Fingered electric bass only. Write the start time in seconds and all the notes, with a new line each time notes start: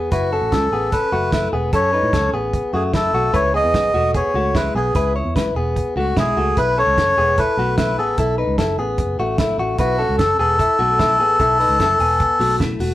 0.12 F#1
0.41 A1
0.52 C#2
0.72 A1
1.12 F#1
1.53 E1
1.73 F#2
2.03 A2
2.13 C#2
2.33 A1
2.73 F#2
3.13 B1
3.33 C#2
3.64 E2
3.74 G#1
3.94 E1
4.34 C#2
4.75 B1
4.95 C#2
5.25 E2
5.35 G#1
5.55 E1
5.96 C#2
6.17 B1
6.37 C#2
6.57 B1
6.87 C#2
6.97 F#1
7.17 E1
7.57 B1
7.97 A1
8.18 B1
8.47 C#2
8.58 F#1
8.78 A1
8.98 F#1
9.18 A1
9.58 A1
9.78 B1
10.09 C#2
10.19 F#1
10.39 E1
10.79 B1
11.19 A1
11.39 B1
11.69 C#2
11.80 F#1
11.99 E1
12.39 B1
12.79 E1